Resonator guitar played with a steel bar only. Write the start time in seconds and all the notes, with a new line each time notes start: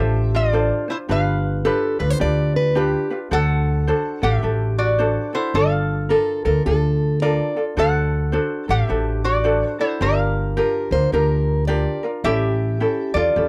Already playing: G4 E5
0.35 F4 D5
0.90 E4 C5
1.11 B4 F5
3.33 A4 F#5
4.23 G4 E5
4.78 F#4 D5
5.35 E4 C5
5.55 A4 F5
7.78 A4 F#5
8.70 G4 E5
9.24 F#4 D5
9.70 C5
9.81 E4 C5
10.02 A#4 F5
12.24 G4 E5
13.14 F4 D5